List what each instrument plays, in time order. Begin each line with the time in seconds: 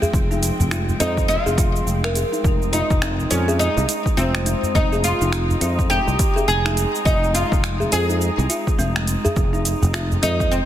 Already playing: string section F3 G#3 C4 G5
0.02 kalimba G#4, udu, cabasa
0.13 fretless electric bass F1, kick, cabasa
0.31 kalimba D#4, cabasa
0.43 closed hi-hat, cabasa
0.60 fretless electric bass F1, udu, cabasa
0.71 kalimba F4, finger snap, cabasa
0.88 udu, cabasa
1.00 fretless electric bass F2, kalimba C4, oud D#4, closed hi-hat, cabasa
1.17 kick, cabasa
1.28 oud F4, cabasa
1.46 fretless electric bass F1, kalimba G#4, cabasa
1.58 kalimba F4, kick, closed hi-hat, cabasa
1.76 cabasa
1.87 fretless electric bass F1, cabasa
2.04 kalimba A#4, finger snap, cabasa
2.15 kalimba G#4, closed hi-hat, cabasa
2.32 kalimba D#4, cabasa
2.44 fretless electric bass F1, string section G#3 D#4, kick, cabasa
2.62 cabasa
2.73 oud D#4, kalimba F4, closed hi-hat, cabasa
2.90 fretless electric bass F1, kick, udu, cabasa
3.02 kalimba C4, finger snap, cabasa
3.20 udu, cabasa
3.30 fretless electric bass F2, oud C#4, closed hi-hat, cabasa
3.48 kalimba G#4, cabasa
3.59 oud D#4, cabasa
3.77 fretless electric bass C2, kalimba D#4, cabasa
3.89 closed hi-hat, cabasa
4.06 kick, cabasa
4.17 fretless electric bass F1, oud C4, kalimba F4, cabasa
4.35 finger snap, cabasa
4.46 kalimba C4, closed hi-hat, cabasa
4.63 udu, cabasa
4.75 fretless electric bass F1, oud D#4, kick, cabasa
4.92 kalimba G#4, cabasa
5.04 oud F4, closed hi-hat, cabasa
5.21 fretless electric bass F1, kalimba D#4, udu, cabasa
5.33 finger snap, cabasa
5.50 udu, cabasa
5.61 fretless electric bass F2, kalimba F4, closed hi-hat, cabasa
5.79 kick, cabasa
5.90 kalimba C4, oud G4, cabasa
6.07 fretless electric bass C2, cabasa
6.19 kick, closed hi-hat, cabasa
6.36 kalimba G#4, cabasa
6.48 fretless electric bass F1, oud G#4, cabasa
6.65 kalimba D#4, finger snap, cabasa
6.77 closed hi-hat, cabasa
6.95 cabasa
7.05 fretless electric bass F1, oud D#4, kalimba F4, kick, cabasa
7.24 cabasa
7.34 kalimba C4, oud F4, closed hi-hat, cabasa
7.52 fretless electric bass F1, kick, udu, cabasa
7.64 finger snap, cabasa
7.80 kalimba G#4, udu, cabasa
7.92 fretless electric bass F2, oud G#4, closed hi-hat, cabasa
8.09 kalimba D#4, cabasa
8.21 cabasa
8.38 fretless electric bass C2, cabasa
8.50 kalimba F4, closed hi-hat, cabasa
8.67 kick, cabasa
8.78 fretless electric bass F1, kalimba C4, cabasa
8.96 finger snap, cabasa
9.07 closed hi-hat, cabasa
9.25 kalimba G#4, udu, cabasa
9.36 fretless electric bass F1, kick, cabasa
9.53 kalimba D#4, cabasa
9.65 closed hi-hat, cabasa
9.82 fretless electric bass F1, udu, cabasa
9.93 kalimba F4, finger snap, cabasa
10.12 udu, cabasa
10.22 fretless electric bass F2, kalimba C4, oud D#4, closed hi-hat, cabasa
10.40 kick, cabasa
10.51 oud C4, cabasa